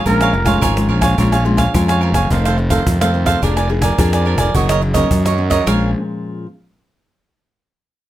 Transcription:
0.06 fingered electric bass A#1, nylon-string guitar A#2 G#3 C#4 F4, cavaquinho A#4 C#5 F5 G#5, trumpet A#4, cajon bass
0.21 cavaquinho C#5 F5 G#5, cajon slap
0.33 fingered electric bass F1, muted cavaquinho stroke, cajon slap
0.45 nylon-string guitar G#3 C#4 F4, cavaquinho C#5 F5 G#5, cajon bass, cajon slap
0.61 fingered electric bass G#1, nylon-string guitar F2, cavaquinho A#4 C#5 F5 G#5, cajon bass
0.77 nylon-string guitar G#3 C#4 F4, cajon slap
0.88 fingered electric bass A#1, cavaquinho A#4 C#5 F5 G#5
1.01 cavaquinho C#5 F5 G#5, cajon bass, cajon slap
1.18 fingered electric bass A#1, nylon-string guitar A#2 G#3 C#4 F4, cavaquinho A#4 C#5 F5 G#5, cajon bass
1.32 cavaquinho C#5 F5 G#5, cajon slap
1.45 nylon-string guitar G#3 C#4 F4, muted cavaquinho stroke
1.57 cavaquinho C#5 F5 G#5, cajon bass, cajon slap
1.74 fingered electric bass F2, nylon-string guitar F2 G#3 C#4 F4, cavaquinho A#4 C#5 F5 G#5, cajon bass
1.88 cavaquinho C#5 F5 G#5, cajon slap
2.01 cavaquinho A#4 C#5 F5 G#5
2.12 fingered electric bass F#1, cavaquinho F5 G#5, cajon bass, cajon slap
2.16 cavaquinho C#5
2.30 fingered electric bass F1, nylon-string guitar F2 D#3 A3 C4, cavaquinho D#4 A4 C5 F5, cajon bass
2.45 cavaquinho A4 C5 F5, cajon slap
2.58 muted cavaquinho stroke
2.70 nylon-string guitar D#3 A3 C4, cavaquinho A4 C5 F5, cajon bass, cajon slap
2.87 fingered electric bass F2, nylon-string guitar C3, cajon bass
3.01 nylon-string guitar D#3 A3 C4, cavaquinho A4 C5 F5, cajon slap
3.14 nylon-string guitar D#3 A3 C4, cajon slap
3.26 cavaquinho A4 C5 F5, cajon bass, cajon slap
3.42 fingered electric bass F1, nylon-string guitar F3 A#3 D4 G#4, cavaquinho D4 A#4 D5 G#5, cajon bass
3.57 cavaquinho A#4 D5 G#5, cajon slap
3.69 nylon-string guitar A#3 D4 G#4, muted cavaquinho stroke
3.82 cavaquinho A#4 D5 G#5, cajon bass, cajon slap
3.98 fingered electric bass F2, nylon-string guitar F3 A#3 D4 G#4, cavaquinho D4 A#4 D5 G#5, cajon bass
4.13 cavaquinho A#4 D5 G#5, cajon slap
4.25 cavaquinho D4 A#4 D5 G#5
4.36 fingered electric bass F1, cavaquinho D5 G#5, cajon bass, cajon slap
4.40 cavaquinho A#4
4.55 fingered electric bass F#1, nylon-string guitar F#2 D#3 A#3 C#4, cavaquinho F#4 A#4 C#5 D#5, cajon bass
4.69 cavaquinho A#4 C#5 D#5, cajon slap
4.81 muted cavaquinho stroke, cajon slap
4.94 nylon-string guitar D#3 A#3 C#4, cavaquinho A#4 C#5 D#5, cajon bass, cajon slap
5.11 nylon-string guitar F#2, fingered electric bass F#2, cajon bass
5.25 cavaquinho A#4 C#5 D#5, cajon slap
5.38 nylon-string guitar D#3 A#3 C#4, cajon slap
5.50 cavaquinho A#4 C#5 D#5, cajon bass, cajon slap
5.66 fingered electric bass A#1, nylon-string guitar A#2 F3 G#3 C#4, cavaquinho A#4 C#5 F5 G#5, cajon slap

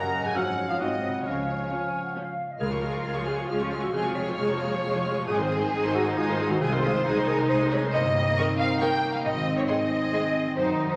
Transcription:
Already playing: double bass section F#1, cello section F#2, harp F#2 C#4 F#4 A#4, french horn section F#3 C#4, clarinet C#4, marimba A#4, flute section D#5, oboe F#5, violin section A#5
0.18 harp G#2
0.23 harp C#4, marimba G#4, violin section G#5
0.27 harp F4
0.32 viola section F3 C#4, marimba F#4, harp G#4
0.36 double bass section G#1, cello section G#2, french horn section F3, flute section C#5, oboe F5, violin section F#5
0.62 harp G#2
0.67 harp C4, marimba F4, violin section F5
0.71 harp F#4
0.76 double bass section G#1, harp G#4, violin section D#5
0.80 cello section G#2, viola section F#3 C4, french horn section F#3 C4, clarinet C4, marimba D#4, violin section D#5, flute section D#5, oboe F#5
1.08 harp C#3
1.12 harp C#4
1.17 harp F4
1.21 double bass section C#2, cello section C#3, french horn section F3, clarinet C#4, harp G#4, violin section C#5, flute section F5
1.25 french horn section C#4, marimba C#4, violin section C#5, oboe F5
1.70 viola section F3 C#4, flute section G#5
2.06 flute section F#5
2.16 viola section F3 C#4, flute section F5
2.51 flute section D#5
2.60 double bass section C#2, harp C#3, viola section G#3 G#4, cello section F4, violin section A#4 F6, marimba A#4
2.71 viola section F3 F4, harp G#3, violin section C#6
2.82 viola section G#3 G#4, harp C#4, violin section F6
2.92 viola section F3 F4, harp F4, violin section C#6
3.03 double bass section C#2, viola section G#3 G#4, harp G#4, violin section F6
3.14 viola section F3 F4, harp C#5, violin section C#6
3.26 viola section G#3 G#4, violin section G#4 F6, marimba G#4, harp F5
3.37 viola section F3 F4, harp G#5, violin section C#6
3.48 double bass section C#2, viola section G#3 G#4, cello section C#4, violin section F4 F6, marimba F4, harp C#5
3.59 viola section F3 F4, harp G#4, violin section C#6
3.71 viola section G#3 G#4, harp C#4, violin section F6
3.82 viola section F3 F4, harp G#3, marimba F#4, violin section F#4 C#6
3.93 double bass section F1, harp F2, viola section G#3 G#4, cello section C4, violin section G#4 F6, marimba G#4
4.04 viola section F3 F4, harp F3, violin section C#6
4.15 viola section G#3 G#4, harp C#4, marimba C#5, violin section C#5 F6
4.28 viola section F3 F4, harp F4, violin section C#6
4.37 double bass section F1, viola section G#3 G#4, cello section A#3, harp G#4, violin section F6
4.48 viola section F3 F4, harp C#5, violin section C#6
4.58 harp F5, violin section F6
4.63 viola section G#3 G#4
4.71 viola section F3 F4, harp G#5, violin section C#6
4.81 double bass section F1, cello section G#3, viola section G#4, harp C#5, violin section F6
4.86 viola section G#3
4.94 viola section F3 F4, harp G#4, violin section C#6
5.04 viola section G#3 G#4, harp C#4, violin section F6
5.16 harp F3, viola section F3 F4, violin section C#6
5.27 double bass section G#1, harp G#2, viola section G#3 G#4, cello section C4, marimba G#4, violin section G#4 D#6
5.38 harp D#3, viola section D#3 C5, violin section C6
5.49 viola section G#3 G#4, harp C4, violin section D#6
5.60 viola section D#3 C5, harp D#4, violin section C6
5.72 double bass section G#1, viola section G#3 G#4, cello section D#4, harp G#4, violin section D#6
5.83 viola section D#3 C5, harp C5, violin section C6
5.94 viola section G#3 G#4, marimba F#4, violin section F#4 D#6, harp D#5
6.05 viola section D#3 C5, harp G#5, violin section C6
6.16 double bass section G#1, viola section G#3 G#4, violin section F4 D#6, marimba F4, harp C5
6.27 viola section D#3 C5, harp G#4, violin section C6
6.38 viola section G#3 G#4, harp C4, violin section D#6
6.49 harp D#3, viola section D#3 C5, marimba F#4, violin section F#4 C6
6.60 double bass section C2, harp C3, viola section G#3 G#4, cello section F4, marimba G#4, violin section G#4 D#6
6.72 viola section D#3 C5, harp G#3, violin section C6
6.83 viola section G#3 G#4, harp C4, violin section C5 D#6, marimba C5
6.94 viola section D#3 C5, harp D#4, violin section C6
7.05 double bass section C2, viola section G#3 G#4, cello section D#4, harp G#4, violin section D#6
7.16 viola section D#3 C5, harp C5, violin section C6
7.27 viola section G#3 G#4, marimba A#4, violin section A#4 D#6, harp D#5
7.38 viola section D#3 C5, harp G#5, violin section C6
7.49 double bass section C2, viola section G#3 G#4, violin section C5 D#6, harp C5, marimba C5
7.61 viola section D#3 C5, harp G#4, violin section C6
7.71 viola section G#3 G#4, harp C4, violin section C#5 D#6, marimba C#5
7.83 viola section D#3 C5, harp G#3, violin section C6
7.92 double bass section G1, harp G2, cello section A#3, violin section D#5, marimba D#5
8.05 harp G3
8.16 harp C#4
8.26 harp D#4
8.37 viola section D#3 A#4, cello section C4, harp A#4, violin section C#6
8.48 harp C#5
8.59 harp D#5, violin section F5, marimba F5
8.70 harp A#5
8.80 viola section D#3 A#4, cello section A#3, harp C#5, violin section G5 C#6, marimba G5
8.92 harp A#4
9.03 harp C#4
9.14 harp G3, violin section F5, marimba F5
9.24 double bass section G#1, harp G#2, cello section C4, violin section D#5, marimba D#5
9.36 harp D#3
9.46 harp C4
9.57 harp D#4, violin section C#5, marimba C#5
9.68 viola section G#3 G#4, harp G#4, violin section D#5 C6, marimba D#5
9.79 harp C5
9.90 harp D#5
10.02 harp G#5
10.12 viola section G#3 G#4, cello section C4, harp C5, violin section C6
10.24 harp G#4
10.35 harp C4
10.46 harp D#3
10.56 double bass section F#2, harp F#2, cello section D#4, marimba C5, violin section C5
10.68 harp F#3
10.79 harp G#3
10.89 harp D#4, violin section C5, marimba C5

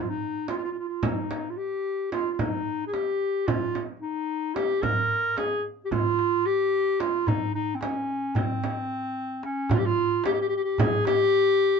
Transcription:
0.01 clarinet F4
0.09 clarinet D#4
0.48 clarinet F4, frame drum
0.57 clarinet F4
0.64 clarinet F4
0.72 clarinet F4
0.79 clarinet F4
0.88 clarinet F4
1.03 clarinet D#4, frame drum
1.31 frame drum
1.50 clarinet F4
1.57 clarinet G4
2.12 clarinet F4, frame drum
2.32 clarinet F4
2.39 clarinet D#4, frame drum
2.87 clarinet G#4
2.93 clarinet G4, frame drum
3.47 clarinet F4, frame drum
3.75 frame drum
4.01 clarinet D#4
4.55 clarinet G4, frame drum
4.82 clarinet A#4, darbuka dum, frame drum
5.37 clarinet G#4, darbuka tek, frame drum
5.85 clarinet G4
5.91 clarinet F4, darbuka dum, frame drum
6.19 darbuka tek
6.46 clarinet G4, darbuka ka
7.00 clarinet F4, darbuka tek, frame drum
7.27 clarinet D#4, darbuka dum, frame drum
7.55 clarinet D#4
7.75 clarinet C4
7.81 clarinet C#4, darbuka tek, frame drum
7.94 darbuka ka
8.08 darbuka ka
8.35 clarinet C4, darbuka dum, frame drum
8.64 frame drum
8.89 darbuka ka
9.03 darbuka ka
9.43 clarinet C#4, darbuka tek
9.70 clarinet F4, darbuka dum, frame drum
9.78 clarinet G4
9.86 clarinet F4
10.24 clarinet G4, darbuka tek, frame drum
10.33 clarinet G4
10.40 clarinet G4
10.48 clarinet G4
10.56 clarinet G4
10.64 clarinet G4
10.78 clarinet G#4, darbuka dum, frame drum
11.05 clarinet G4, darbuka tek, frame drum

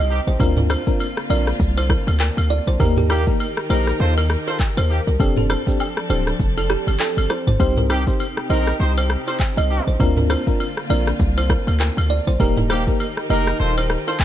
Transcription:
Already playing: 808-style bass C2, string section C3 C4 D#4 G4
0.10 horn section C4 D#4 G4, shaker
0.27 808-style bass A1, kalimba C5, shaker
0.39 808-style bass D2, string section D3 A#3 F4, fm electric piano C4 D4 F4 A#4, kick, high agogo, shaker
0.57 kalimba A#4, mid tom
0.70 kalimba C5, cross-stick, high agogo, shaker
0.87 fm electric piano C4 D4 F4 A#4, kick, shaker
1.00 high agogo, shaker
1.17 cross-stick
1.30 808-style bass A#1, fm electric piano C4 D4 F4 A#4, kalimba D5, high agogo, shaker
1.47 cross-stick, shaker
1.60 808-style bass C2, kick, shaker
1.77 kalimba C5, high agogo
1.90 kalimba A#4, kick, cross-stick, shaker
2.07 808-style bass D2, high agogo, shaker
2.20 kalimba A#4, clap, low woodblock, shaker
2.37 808-style bass D2, high agogo
2.50 kalimba D5, shaker
2.67 808-style bass A#1, kalimba C5, shaker
2.79 808-style bass D#2, string section D#3 D#4 G4 A#4, fm electric piano A#3 D#4 G4 A#4, kick, high agogo, shaker
2.97 kalimba G4, mid tom
3.10 horn section A#3 D#4 G4, kalimba A#4, cross-stick, high agogo, shaker
3.27 fm electric piano A#3 D#4 G4 A#4, kick, shaker
3.40 high agogo, shaker
3.57 cross-stick
3.70 808-style bass A#1, fm electric piano A#3 D#4 G4 A#4, horn section D#4 G4 A#4, kalimba C5, high agogo, shaker
3.87 cross-stick, shaker
4.00 808-style bass D#2, horn section F4 A4 C5, shaker
4.17 kalimba A#4, high agogo
4.30 cross-stick, shaker
4.47 horn section F4 A4 C5, kalimba A#4, high agogo, shaker
4.60 kick, clap, low woodblock, shaker
4.77 808-style bass D#2, kalimba C5, high agogo
4.90 horn section A#3 D#4 G4, shaker
5.07 808-style bass C2, kalimba A#4, shaker
5.19 808-style bass F1, string section F3 C4 D4 A4, fm electric piano C4 D4 G4 A4, kick, high agogo, shaker
5.36 kalimba A4, mid tom
5.50 kalimba C5, cross-stick, high agogo, shaker
5.67 fm electric piano C4 D4 G4 A4, kick, shaker
5.79 high agogo, low woodblock, shaker
5.97 cross-stick
6.09 808-style bass D1, fm electric piano C4 D4 G4 A4, kalimba C5, high agogo, shaker
6.27 cross-stick, shaker
6.40 808-style bass F1, kick, shaker
6.57 kalimba A4, high agogo
6.70 kalimba G4, cross-stick, shaker
6.87 808-style bass G1, high agogo, shaker
7.00 kalimba A4, clap, low woodblock, shaker
7.17 808-style bass G1, high agogo
7.30 kalimba C5, cross-stick, shaker
7.47 808-style bass G1, kalimba C5, mid tom, shaker
7.59 808-style bass C2, string section C3 C4 D#4 G4, fm electric piano C4 D#4 G4 C5, kick, high agogo, shaker
7.77 kalimba A#4, mid tom
7.90 horn section C4 D#4 G4, kalimba C5, cross-stick, high agogo, shaker
8.07 fm electric piano C4 D#4 G4 C5, kick, shaker
8.20 high agogo, shaker
8.37 cross-stick
8.49 808-style bass A#1, fm electric piano C4 D#4 G4 C5, horn section D#4 G4 A#4, kalimba D#5, high agogo, shaker
8.67 cross-stick, shaker
8.80 808-style bass C2, horn section D#4 G4 C5, shaker
8.98 kalimba C5, high agogo
9.10 cross-stick, shaker
9.27 horn section D#4 G4 C5, kalimba C5, high agogo, shaker
9.40 kick, clap, low woodblock, shaker
9.57 808-style bass C2, kalimba D#5, high agogo
9.70 horn section C4 D#4 G4, shaker
9.87 808-style bass A1, kalimba C5, shaker
9.99 808-style bass D2, string section D3 A#3 F4, fm electric piano C4 D4 F4 A#4, kick, high agogo, shaker
10.17 kalimba A#4, mid tom
10.30 kalimba C5, cross-stick, high agogo, shaker
10.47 fm electric piano C4 D4 F4 A#4, kick, shaker
10.60 high agogo, shaker
10.77 cross-stick
10.89 808-style bass A#1, fm electric piano C4 D4 F4 A#4, kalimba D5, high agogo, shaker
11.07 cross-stick, shaker
11.20 808-style bass C2, kick, shaker
11.38 kalimba C5, high agogo
11.50 kalimba A#4, kick, cross-stick, shaker
11.67 808-style bass D2, high agogo, shaker
11.80 kalimba A#4, clap, low woodblock, shaker
11.97 808-style bass D2, high agogo
12.10 kalimba D5, shaker
12.27 808-style bass A#1, kalimba C5, shaker
12.40 808-style bass D#1, string section D#3 D#4 G4 A#4, fm electric piano A#3 D#4 G4 A#4, kick, high agogo, shaker
12.57 kalimba A#4, mid tom
12.70 horn section A#3 D#4 G4, kalimba C5, cross-stick, high agogo, shaker
12.87 fm electric piano A#3 D#4 G4 A#4, kick, shaker
13.00 high agogo, shaker
13.17 cross-stick
13.30 808-style bass F1, fm electric piano A#3 D#4 G4 A#4, horn section D#4 G4 A#4, kalimba D#5, high agogo, shaker
13.47 cross-stick, shaker
13.60 808-style bass D#1, horn section F4 A4 C5, shaker
13.78 kalimba C5, high agogo
13.90 cross-stick, shaker
14.07 horn section F4 A4 C5, kalimba A#4, high agogo, shaker
14.20 kick, clap, low woodblock, shaker

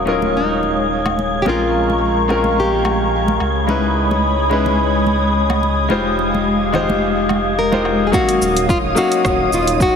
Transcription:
Already playing: analog synth bass D#1, grand piano F#3 C#4 D#4 A#4 F5, synth texture G#3 G#6, nylon-string guitar F#4, analog synth pad C#5 F5 D#6
0.05 grand piano F#3 C#4 D#4 F4 A#4, muted conga
0.22 high conga
0.37 nylon-string guitar D#4
0.63 high conga
1.06 high conga, low woodblock
1.19 muted conga
1.42 grand piano G#3 C4, nylon-string guitar G4, analog synth pad A#4 F5 A#5, high conga
1.46 analog synth bass A#1, grand piano C#4 F4 A#4, nylon-string guitar F4, analog synth pad C#6
1.90 high conga
2.28 grand piano G#3 C4 C#4 F4 A#4, muted conga, low woodblock
2.44 high conga
2.60 nylon-string guitar G4
2.85 high conga, low woodblock
3.28 high conga
3.39 analog synth bass C#2, analog synth pad C#5 B5 D#6, low woodblock
3.67 grand piano G#3 C#4 D#4 E4 B4, high conga
4.11 high conga
4.49 grand piano G#3 C#4 D#4 E4 B4, muted conga
4.66 high conga
5.06 high conga
5.50 high conga, low woodblock
5.63 muted conga
5.88 analog synth bass F1, grand piano G#3 D#4 F4 G4 C5, analog synth pad G#3 G4 F5, high conga
6.19 muted conga
6.34 high conga
6.72 grand piano G#3 D#4 F4 G4 C5, muted conga, low conga, low woodblock
6.90 high conga
7.29 high conga, low woodblock
7.59 nylon-string guitar A#4
7.72 grand piano G#3 D#4 F4 G4 C5, high conga
7.85 low woodblock
8.07 nylon-string guitar G#4
8.12 grand piano F#3 A#3 C#4 D#4 F5, synth texture D#4 D#6, nylon-string guitar F#4, analog synth pad C#5 F5 D#6, kick, shaker
8.29 closed hi-hat, shaker
8.41 analog synth bass D#1, shaker
8.57 closed hi-hat, shaker
8.69 nylon-string guitar F4, kick, shaker
8.84 analog synth bass D#1
8.95 grand piano F#3 A#3 C#4 D#4 F5, nylon-string guitar F#4, shaker
9.12 closed hi-hat, shaker
9.25 analog synth bass D#1, kick, cross-stick, shaker
9.52 analog synth bass D#1, nylon-string guitar F4, shaker
9.67 closed hi-hat, shaker
9.80 nylon-string guitar F#4, kick, shaker

